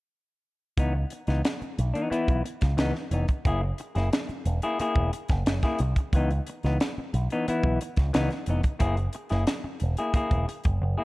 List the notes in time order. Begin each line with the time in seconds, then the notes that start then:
0.77 C#2 E3 B3 D#4, kick, closed hi-hat
0.95 muted clean electric guitar stroke
1.10 muted clean electric guitar stroke, closed hi-hat
1.27 C#2 E3 B3 D#4, snare, closed hi-hat
1.44 muted clean electric guitar stroke, snare, closed hi-hat
1.61 muted clean electric guitar stroke, muted picked electric bass stroke, closed hi-hat
1.78 B1, closed hi-hat
1.93 E3 B3 D#4, closed hi-hat
2.10 E3 B3 E4, muted picked electric bass stroke, closed hi-hat
2.28 B1, kick, closed hi-hat
2.44 muted clean electric guitar stroke, closed hi-hat
2.61 C#2, muted clean electric guitar stroke, kick, snare, closed hi-hat
2.77 C#2 E3 B3 D#4, snare, closed hi-hat
2.94 muted clean electric guitar stroke, snare
3.11 F1 E3 B3 D#4, closed hi-hat
3.28 muted clean electric guitar stroke, kick, closed hi-hat
3.45 F#1 A#3 E4 G#4, kick, closed hi-hat
3.78 muted clean electric guitar stroke, closed hi-hat
3.95 F#1 A#3 E4 G#4, snare, closed hi-hat
4.13 muted clean electric guitar stroke, snare, closed hi-hat
4.29 muted clean electric guitar stroke, muted picked electric bass stroke, closed hi-hat
4.46 E1, closed hi-hat
4.62 A#3 E4 G#4, closed hi-hat
4.80 A#3 E4 G#4, muted picked electric bass stroke, closed hi-hat
4.96 E1, kick
5.13 muted clean electric guitar stroke, closed hi-hat
5.29 F#1, muted clean electric guitar stroke, kick, snare, closed hi-hat
5.46 F#1, muted clean electric guitar stroke, snare, closed hi-hat
5.62 A#3 E4 G#4, kick, snare, closed hi-hat
5.79 C2, muted clean electric guitar stroke, closed hi-hat
5.96 muted clean electric guitar stroke, kick, closed hi-hat
6.13 C#2 E3 B3 D#4, kick, closed hi-hat
6.30 muted clean electric guitar stroke, closed hi-hat
6.46 muted clean electric guitar stroke, closed hi-hat
6.63 C#2 E3 B3 D#4, snare, closed hi-hat
6.80 muted clean electric guitar stroke, snare, closed hi-hat
6.98 muted picked electric bass stroke, muted clean electric guitar stroke
7.14 B1, closed hi-hat
7.30 E3 B3 D#4, closed hi-hat
7.48 E3 B3 E4, muted picked electric bass stroke, closed hi-hat
7.63 B1, kick
7.81 muted clean electric guitar stroke, closed hi-hat
7.96 C#2, muted clean electric guitar stroke, kick, snare, closed hi-hat
8.13 C#2 E3 B3 D#4, snare, closed hi-hat
8.30 muted clean electric guitar stroke, snare, closed hi-hat
8.46 F1 E3 B3, closed hi-hat
8.50 D#4
8.63 kick, closed hi-hat
8.79 F#1 A#3 E4 G#4, kick, closed hi-hat
8.97 closed hi-hat
9.13 muted clean electric guitar stroke, closed hi-hat
9.29 F#1 A#3 E4 G#4, snare, closed hi-hat
9.47 muted clean electric guitar stroke, snare, closed hi-hat
9.64 muted picked electric bass stroke, muted clean electric guitar stroke
9.80 E1, closed hi-hat
9.97 A#3 E4 G#4, closed hi-hat
10.14 A#3 E4 G#4, muted picked electric bass stroke, kick, closed hi-hat
10.31 E1, kick, closed hi-hat
10.48 muted clean electric guitar stroke, closed hi-hat
10.64 F#1, muted clean electric guitar stroke, kick, closed hi-hat
10.82 F#1, muted clean electric guitar stroke
10.98 A#3 E4 G#4